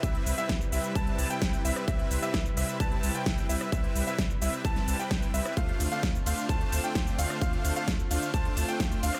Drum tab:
RD |----------------|----------------|----------------|--x---x---x---x-|
HH |xxoxx-oxxxoxxxox|xxoxx-oxxxoxxxo-|xxoxx-oxxxoxxxox|xxoxx-oxxxoxxxo-|
SH |x-xxxxxxx-xxxxxx|x-xxxxxxx-xxxxxx|x-xxxxxxx-xxxxxx|x-xxxxxxx-xxxxxx|
SD |----o-------o--r|----o-------o--r|----o----o--o--r|----o-------o--r|
BD |o---o---o---o---|o---o---o---o---|o---o---o---o---|o---o---o---o---|

RD |--x---x---x---x-|
HH |xxoxx-oxxxoxxxox|
SH |x-xxxxxxx-xxxxxx|
SD |----o-------o--r|
BD |o---o---o---o---|